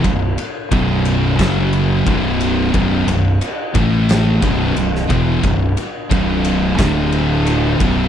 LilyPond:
<<
  \new Staff \with { instrumentName = "Distorted electric guitar" } { \clef bass \time 4/4 \key b \minor \tempo 4 = 89 <b,, fis,>8 r8 <b,, fis, b,>4 <fis, cis fis>4 <b,, fis, b,>4 | <b,, fis, b,>8 <b,, fis,>8 r8 <a, e a>4 <b,, fis, b,>8 <b,, fis,>8 <e, b, e>8 | <b,, fis,>8 r8 <b,, fis, b,>4 <d, a, d>4. <b,, fis, b,>8 | }
  \new Staff \with { instrumentName = "Distorted electric guitar" } { \clef bass \time 4/4 \key b \minor <b,, fis,>8 r8 <b,, fis, b,>4 <fis, cis fis>4 <b,, fis, b,>4 | <b,, fis, b,>8 <b,, fis,>8 r8 <a, e a>4 <b,, fis, b,>8 <b,, fis,>8 <e, b, e>8 | <b,, fis,>8 r8 <b,, fis, b,>4 <d, a, d>4. <b,, fis, b,>8 | }
  \new Staff \with { instrumentName = "Distorted electric guitar" } { \clef bass \time 4/4 \key b \minor <b,, fis,>8 r8 <b,, fis, b,>4 <fis, cis fis>4 <b,, fis, b,>4 | <b,, fis, b,>8 <b,, fis,>8 r8 <a, e a>4 <b,, fis, b,>8 <b,, fis,>8 <e, b, e>8 | <b,, fis,>8 r8 <b,, fis, b,>4 <d, a, d>4. <b,, fis, b,>8 | }
  \new Staff \with { instrumentName = "Fingered electric bass" } { \clef bass \time 4/4 \key b \minor b,,,8 r8 b,,,4 fis,,4 b,,,4 | b,,,8 b,,,8 r8 a,,4 b,,,8 b,,,8 e,,8 | b,,,8 r8 b,,,4 d,,4. b,,,8 | }
  \new DrumStaff \with { instrumentName = "Drums" } \drummode { \time 4/4 <bd cymr>8 cymr8 <bd cymr>8 cymr8 <bd cymr sn>8 cymr8 <bd cymr>8 cymr8 | <bd cymr>8 cymr8 cymr8 <bd cymr>8 <cymr sn>8 <bd cymr>8 cymr16 sn16 <bd cymr>8 | <bd cymr>8 cymr8 <bd cymr>8 cymr8 <bd cymr sn>8 cymr8 cymr8 <bd cymr>8 | }
>>